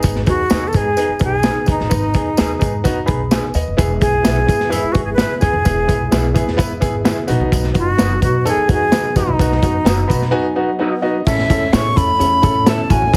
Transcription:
Already playing: B3 D#4 G#4
0.03 G#1, kick, closed hi-hat, tambourine
0.16 snare
0.26 D#2 B3 D#4 F#4 G#4, kick, closed hi-hat, tambourine
0.50 D#2 B3 D#4 G#4 B4 D#5, snare, closed hi-hat, tambourine
0.68 A4
0.73 G#2 B3 D#4 G#4, kick, closed hi-hat, tambourine
0.97 B3 D#4 G#4, closed hi-hat, tambourine
1.09 muted upright bass stroke
1.19 B1 B3 D#4 G#4, kick, closed hi-hat, tambourine
1.24 G#4
1.43 B3 D#4 G#4 B4 D#5, snare, closed hi-hat, tambourine
1.66 D#2 B3 D#4 G#4, kick, closed hi-hat, tambourine
1.71 D#4
1.80 A1, snare
1.89 G#1 B3 D#4 B4, kick, closed hi-hat, tambourine
2.14 D#2 B3 D#4 G#4, kick, closed hi-hat, tambourine
2.37 D#2 B3 D#4 G#4 B4 D#5, snare, closed hi-hat, tambourine
2.59 G#2 B3 D#4 G#4, kick, closed hi-hat, tambourine
2.84 B3 D#4 F#4, kick, closed hi-hat, tambourine
2.97 muted upright bass stroke
3.06 B1 B3 D#4 G#4 B5, kick, closed hi-hat, tambourine
3.31 D#4 G#4 B4 D#5 G#5, snare, closed hi-hat, tambourine
3.54 D#2 B4 D#5, closed hi-hat, tambourine
3.68 F1
3.77 E1 G#3 B3 E4 G#4, kick, closed hi-hat, tambourine, muted conga
4.00 B1 B3 E4 G#4, kick, closed hi-hat, tambourine, muted conga
4.23 B1 B3 E4 G#4 B4 E5, snare, closed hi-hat, tambourine, high conga
4.47 E2 B3 E4 G#4, kick, closed hi-hat, tambourine, muted conga
4.60 snare
4.69 B3 E4 G#4, closed hi-hat, tambourine, muted conga, low conga
4.83 muted upright bass stroke
4.92 G#1 B3 E4 F#4 G#4, kick, closed hi-hat, tambourine, low conga
5.04 G#4
5.13 B4
5.18 B3 E4 G#4 B4 E5, snare, closed hi-hat, tambourine, high conga
5.39 C#2 B3 E4 G#4, kick, closed hi-hat, tambourine
5.53 F1, high conga
5.65 E1 B3 E4 G#4, kick, closed hi-hat, tambourine, muted conga
5.87 B1 B3 E4 G#4, kick, closed hi-hat, tambourine, muted conga
6.11 B1 B3 E4 G#4 B4 E5, snare, closed hi-hat, tambourine, high conga
6.34 E2 B3 E4 G#4, kick, closed hi-hat, tambourine, muted conga
6.48 snare
6.57 B3 E4 B4, kick, closed hi-hat, tambourine, muted conga, low conga
6.69 muted upright bass stroke
6.80 G#1 B3 E4 G#4, kick, closed hi-hat, tambourine, low conga
7.04 B3 E4 G#4 B4 E5, snare, closed hi-hat, tambourine, high conga
7.27 B1 F#3 B3 D#4 F#4, closed hi-hat, tambourine
7.40 C2, high conga
7.52 B1, kick, closed hi-hat, tambourine, muted conga
7.63 snare
7.74 F#1 B3 D#4 F#4, kick, closed hi-hat, tambourine, muted conga
7.78 F#4
7.97 F#1 B3 D#4 F#4 B4 D#5, snare, closed hi-hat, tambourine, high conga
8.22 B2 B3 D#4 F#4, kick, closed hi-hat, tambourine
8.45 B3 D#4 G#4 A4, closed hi-hat, tambourine, muted conga, low conga
8.57 muted upright bass stroke
8.68 D#2 B3 D#4 F#4, kick, closed hi-hat, tambourine, low conga
8.73 G#4
8.92 B3 D#4 F#4 B4 D#5, snare, closed hi-hat, tambourine, high conga
9.16 F#2 B3 D#4 F#4, kick, closed hi-hat, tambourine
9.27 C2, high conga
9.39 B1 B3 D#4 F#4, kick, closed hi-hat, tambourine, muted conga
9.52 snare
9.62 B3 D#4 F#4, kick, closed hi-hat, tambourine, muted conga
9.84 F#1 B3 D#4 F#4 B4 D#5, snare, closed hi-hat, tambourine, high conga
10.08 B2 B3 D#4 F#4 B5, kick, closed hi-hat, tambourine, muted conga
10.22 snare
10.31 B3 D#4 F#4 G#5
10.55 B3 D#4 F#4 F#5
10.79 B3 D#4 F#4 B4 D#5 F#5
11.02 B3 D#4 F#4 D#5
11.26 A1 A3 C#4 E4 A4 E5, kick, crash, tambourine, muted conga
11.38 snare
11.50 C#2 C#4 E4 A4, kick, closed hi-hat, tambourine, muted conga
11.72 A2 C#4 E4 G#4 A4 C#5 E5 C#6, snare, closed hi-hat, tambourine, high conga
11.95 E2 C#4 E4 A4 B5, kick, closed hi-hat, tambourine, muted conga
12.19 E2 C#4 E4 A4, closed hi-hat, tambourine, muted conga
12.42 A2 C#4 E4 A4, kick, closed hi-hat, tambourine, low conga
12.66 C#4 E4 A4 C#5 E5 A5, snare, closed hi-hat, tambourine, high conga
12.90 A1 C#4 E4 F#4 G#5, kick, closed hi-hat, tambourine
13.02 high conga
13.12 G#3 C4 D#4 G#4, kick, closed hi-hat

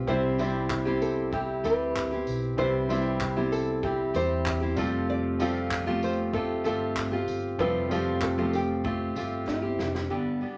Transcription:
0.07 C2 C3 G3 C4 E4 G4 C5, kick
0.38 C3 G3 C4 E4 G4 C5, tambourine
0.70 kick, clap
0.85 C3 G3 C4 E4 G4
1.02 A4, tambourine
1.32 G3 C4 E4 G4, kick
1.64 D2 G3 C4 E4 G4 B4, tambourine
1.96 kick, clap
2.11 C4 E4 G4
2.27 B1, tambourine
2.57 C2 C3 G3 C4 E4 G4 B4 C5, kick
2.88 C3 G3 C4 E4 G4 C5, tambourine
3.21 kick, clap
3.36 C3 G3 C4 E4 G4
3.52 A4, tambourine
3.83 G3 C4 E4 G4, kick
4.14 E2 G3 C4 E4 G4 C5, tambourine
4.46 kick, clap
4.60 C4 E4 G4
4.75 F1 F3 G3 A3 C4 F4 G4 A4, kick, tambourine
5.10 D5
5.38 F3 G3 A3 C4 F4 G4 A4, tambourine
5.71 kick, clap
5.86 F3 A3 C4 F4 G4
6.03 C5, tambourine
6.33 A3 C4 F4 G4 A4, kick
6.64 G1 A3 C4 F4 G4 A4, tambourine
6.96 kick, clap
7.12 C4 F4 G4
7.27 G1, tambourine
7.58 F1 F3 G3 A3 C4 F4 G4 A4 B4, kick
7.89 F3 G3 A3 C4 F4 A4, tambourine
7.93 G4
8.21 A4, kick, clap
8.38 F3 A3 C4 F4 G4
8.53 G4, tambourine
8.84 A3 C4 F4 G4, kick
9.15 G1 A3 C4 F4 G4, tambourine
9.48 E4, kick, snare
9.62 C4 G4
9.79 F1, snare
9.95 D4, snare
10.10 G2 D3 G3 B3 D4 G4
10.41 G3 B3 D4 G4

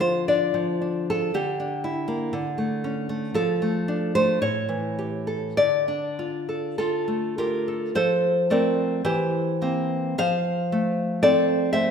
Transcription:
Already playing: D3 F3 D4
0.00 F4 C5
0.28 D4 D5
0.54 F3
0.82 D4
1.10 F4 A4
1.34 D3 G4
1.60 D4
1.84 E4
2.08 A#3
2.33 D3
2.58 A3
2.84 C#4
3.09 A3
3.34 F3 A4
3.62 A3
3.88 D4
4.15 A3 C5
4.42 A2 C#5
4.69 E3
4.99 G4
5.27 A4
5.57 D3 D5
5.88 D4
6.19 F4
6.49 A4
6.78 F4 A4
7.08 A3
7.38 F4 G4 A#4
7.68 A4
7.95 F3 A4 C5
8.50 A3 C4 A#4 D5
9.04 E3 G4 C5
9.62 A#3 C4
10.18 F3 C5 F5
10.72 A3
11.23 C4 A4 D5
11.73 A3 C5 E5

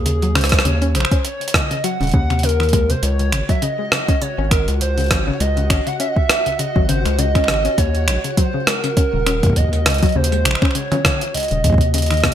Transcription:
Already playing: D#2
0.06 C#3 G#4, closed hi-hat
0.22 F#3, closed hi-hat
0.35 C#2 C#3 C5, finger snap, cross-stick, closed hi-hat
0.38 closed hi-hat
0.41 cross-stick, closed hi-hat
0.44 closed hi-hat
0.45 closed hi-hat
0.49 G#3, kick, cross-stick, closed hi-hat
0.52 closed hi-hat
0.59 cross-stick
0.65 D#2 C#3 C#5, closed hi-hat
0.82 C#4, closed hi-hat
0.95 A#1 C#3 C5, finger snap, closed hi-hat
1.00 finger snap
1.05 finger snap
1.11 C#4, kick, closed hi-hat
1.25 C#5, closed hi-hat
1.41 closed hi-hat
1.48 closed hi-hat
1.54 C#2 D#5, kick, cross-stick, mid tom
1.71 C#3, closed hi-hat
1.84 F#3 F#5, closed hi-hat
2.01 D#1 C#3, closed hi-hat
2.03 closed hi-hat
2.07 closed hi-hat
2.09 closed hi-hat
2.12 D#2 C#3, kick, closed hi-hat
2.30 C3, finger snap, closed hi-hat
2.39 closed hi-hat
2.43 C#3 A#4, closed hi-hat
2.49 closed hi-hat
2.60 D#3, finger snap, closed hi-hat
2.63 closed hi-hat
2.69 closed hi-hat
2.73 G#3, kick, closed hi-hat
2.90 C3 C5, closed hi-hat
3.03 C#2 F#4 C#5 F#5, closed hi-hat
3.19 C#2, closed hi-hat
3.32 G#1 C#3, finger snap, closed hi-hat
3.49 F#3 E5, kick, closed hi-hat
3.62 C#3 D#5, closed hi-hat
3.79 G#3
3.92 C#3, cross-stick
4.08 C#4, kick, closed hi-hat
4.22 C#3 C#5, closed hi-hat
4.38 G#1 C#4
4.51 A#4, finger snap, kick, closed hi-hat
4.68 C#2, closed hi-hat
4.81 C#2 C5, closed hi-hat
4.98 C#3, closed hi-hat
5.00 closed hi-hat
5.04 closed hi-hat
5.06 closed hi-hat
5.09 finger snap, cross-stick, closed hi-hat
5.11 G#1 F#3, kick, closed hi-hat
5.27 C#3 C#5
5.40 C#2 G#3 D#5, closed hi-hat
5.57 C#3, closed hi-hat
5.70 G#1 C#4, finger snap, kick, closed hi-hat
5.87 C#3 F#5, closed hi-hat
6.00 C#4 E5, closed hi-hat
6.08 D#5
6.15 E5, kick
6.30 cross-stick, closed hi-hat
6.46 C#2, closed hi-hat
6.59 C#3 D#5, closed hi-hat
6.76 G#1 F#3, kick
6.89 C#3 C5, closed hi-hat
7.06 C#2 G#3, finger snap, closed hi-hat
7.19 C#3 D#5, closed hi-hat
7.35 C#4, finger snap, kick, closed hi-hat
7.44 finger snap
7.48 G#1 C#3, cross-stick, closed hi-hat
7.54 finger snap
7.65 C#4, closed hi-hat
7.78 D#2 C#5, kick, closed hi-hat
7.95 closed hi-hat
8.08 A#1 C#2, finger snap, closed hi-hat
8.24 C#3, closed hi-hat
8.37 F#3 C5, kick, closed hi-hat
8.54 C#3
8.67 G#3 A#4, cross-stick, closed hi-hat
8.84 C#3, closed hi-hat
8.97 C#4, kick, closed hi-hat
9.13 D#1 C#3
9.27 C#4, finger snap, closed hi-hat
9.43 D#2, kick, closed hi-hat
9.46 kick
9.50 kick
9.53 D#5, kick, closed hi-hat
9.56 kick
9.60 kick
9.65 kick
9.69 kick
9.73 C#2, closed hi-hat
9.86 C#2 C#3, finger snap, cross-stick, closed hi-hat
9.90 closed hi-hat
9.94 closed hi-hat
9.98 closed hi-hat
10.03 F#3, kick, closed hi-hat
10.06 closed hi-hat
10.09 closed hi-hat
10.12 D#2 C#3 C5, closed hi-hat
10.24 closed hi-hat
10.32 G#3, closed hi-hat
10.45 A#1 C#3, finger snap, closed hi-hat
10.51 finger snap
10.55 finger snap
10.62 C#4, finger snap, kick
10.65 finger snap
10.71 finger snap
10.75 C#3 C#5, closed hi-hat
10.92 C#4, closed hi-hat, mid tom
11.05 kick, cross-stick, closed hi-hat, mid tom
11.21 closed hi-hat
11.34 C#2 D#5, closed hi-hat
11.37 closed hi-hat
11.40 closed hi-hat
11.43 closed hi-hat
11.44 closed hi-hat
11.48 D#1, closed hi-hat
11.51 C#3, closed hi-hat
11.64 D#2 C#3, kick, closed hi-hat
11.67 kick
11.70 kick
11.72 kick
11.74 kick
11.78 C3, kick, closed hi-hat
11.94 C#3 D#5, closed hi-hat
11.98 closed hi-hat
12.02 closed hi-hat
12.06 closed hi-hat
12.10 D#3, finger snap, closed hi-hat
12.14 closed hi-hat
12.17 closed hi-hat
12.20 C3, kick, cross-stick, closed hi-hat
12.24 closed hi-hat

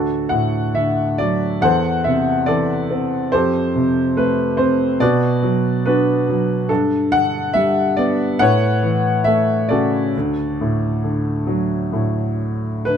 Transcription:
Already playing: D2 D4 F#4 A4
0.29 A2 F#5
0.75 D3 E5
1.18 F#3 D5
1.61 E2 A4 C5 F#5
2.04 C3 E5
2.46 E3 A4 D5
2.91 C4
3.32 F2 G4 A4 C5
3.75 C3
4.17 A3 B4
4.57 C4 C5
5.00 B2 F#4 B4 D5
5.43 F#3
5.86 B3 D4 F#4 B4
6.29 F#3
6.69 G2 D4 A4
7.12 D3 F#5
7.53 G3 E5
7.97 B3 D5
8.39 A2 B4 C#5 F#5
8.83 E3
9.24 A3 E5
9.69 C#3 F#4 A4 D5
10.17 D2
10.61 A2
11.04 D3
11.47 F#3
11.93 A2
12.85 D3 B4

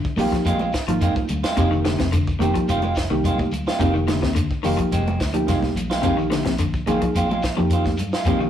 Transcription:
0.04 muted fingered electric bass stroke, kick, shekere
0.17 A#1 D#3 G#3 A#3 C4 D#4 F4 G4, muted clean electric guitar stroke, open hi-hat, high conga, low conga, shekere
0.31 F3, muted clean electric guitar stroke, kick, snare, closed hi-hat, shekere
0.45 A#1 D#3 G#3 C4 F4, closed hi-hat, low conga, shekere
0.59 G#3 C4 F4, high conga, shekere
0.73 muted clean electric guitar stroke, kick, snare, closed hi-hat, shekere
0.88 G#1 F3 A#3 D#4 F4, closed hi-hat, shekere
1.01 D#3 G#3 C4 F4, closed hi-hat, low conga, shekere
1.15 muted clean electric guitar stroke, kick, high conga, shekere
1.28 D2, muted clean electric guitar stroke, closed hi-hat, low conga, shekere
1.44 G#3 C4 F4, muted fingered electric bass stroke, snare, closed hi-hat, high conga, shekere
1.56 F1 C3 D#3 G#3 A#3 C4 D#4 F4 G4, kick, closed hi-hat, shekere
1.71 D#3, muted clean electric guitar stroke, shekere
1.85 D3, muted clean electric guitar stroke, snare, closed hi-hat, high conga, shekere
1.99 F1 C3, muted clean electric guitar stroke, kick, snare, closed hi-hat, high conga, shekere
2.12 D3, muted clean electric guitar stroke, closed hi-hat, high conga, shekere
2.27 kick, shekere
2.39 F1 D#3 A#3 C4 D#4 G4, muted clean electric guitar stroke, closed hi-hat, high conga, low conga, shekere
2.54 F3, muted clean electric guitar stroke, kick, closed hi-hat, shekere
2.69 F1 D#3 C4 F4, muted clean electric guitar stroke, closed hi-hat, low conga, shekere
2.82 G#3 C4 F4, high conga, shekere
2.95 muted clean electric guitar stroke, kick, snare, closed hi-hat, shekere
3.10 C2 D#3 A#3 D#4 G4, shekere
3.24 D#3 G#3 C4 F4, closed hi-hat, low conga, shekere
3.39 muted clean electric guitar stroke, kick, high conga, shekere
3.52 D2, muted clean electric guitar stroke, closed hi-hat, low conga, shekere
3.66 G#3 C4 F4, snare, high conga, shekere
3.79 F1 C3 D#3 A#3 C4 D#4 F4 G4, muted clean electric guitar stroke, kick, closed hi-hat, shekere
3.94 D#3, muted clean electric guitar stroke, shekere
4.08 D3, muted clean electric guitar stroke, snare, closed hi-hat, high conga, shekere
4.22 D#2 C3, muted clean electric guitar stroke, kick, snare, shekere
4.35 D3, muted clean electric guitar stroke, closed hi-hat, high conga, shekere
4.50 muted fingered electric bass stroke, kick, shekere
4.63 F1 D#3 G#3 A#3 D#4 F4 G4, muted clean electric guitar stroke, open hi-hat, high conga, low conga, shekere
4.77 F3, muted clean electric guitar stroke, kick, closed hi-hat, shekere
4.92 F1 D#3 G#3 C4, muted clean electric guitar stroke, closed hi-hat, low conga, shekere
5.06 G#3 C4, high conga, shekere
5.20 D2, muted clean electric guitar stroke, kick, snare, closed hi-hat, shekere
5.33 F3 A#3 D#4 G4, closed hi-hat, shekere
5.47 C2 D#3 G#3 C4 F4, snare, closed hi-hat, low conga, shekere
5.62 muted clean electric guitar stroke, kick, snare, high conga, shekere
5.75 A#1, muted clean electric guitar stroke, closed hi-hat, low conga, shekere
5.90 G#3 C4 F4, snare, closed hi-hat, high conga, shekere
6.02 A#1 C3 D#3 G#3 A#3 C4 D#4 F4 G4, kick, closed hi-hat, shekere
6.17 D#3, muted clean electric guitar stroke, shekere
6.30 D3, muted clean electric guitar stroke, snare, closed hi-hat, high conga, shekere
6.45 A#1 C3, muted clean electric guitar stroke, kick, snare, closed hi-hat, high conga, shekere
6.58 D3, muted clean electric guitar stroke, closed hi-hat, shekere
6.74 kick, shekere
6.87 A#1 D#3 G#3 A#3 C4 D#4 F4 G#4, closed hi-hat, high conga, low conga, shekere
7.02 F3, muted clean electric guitar stroke, kick, closed hi-hat, shekere
7.15 A#1 C4 F4, muted clean electric guitar stroke, closed hi-hat, low conga, shekere
7.30 G#3 C4 F4, high conga, shekere
7.43 muted clean electric guitar stroke, kick, snare, closed hi-hat, shekere
7.57 F2 F3 A#3 D#4 G4, shekere
7.70 D#3 C4 F4, closed hi-hat, shekere
7.84 muted clean electric guitar stroke, kick, snare, high conga, shekere
7.98 G2, muted clean electric guitar stroke, closed hi-hat, low conga, shekere
8.12 G#3 F4, muted clean electric guitar stroke, snare, shekere
8.25 A#1 C3 D#3 G#3 A#3 C4 D#4 F4 G4, kick, closed hi-hat, shekere
8.40 D#3, muted clean electric guitar stroke, shekere

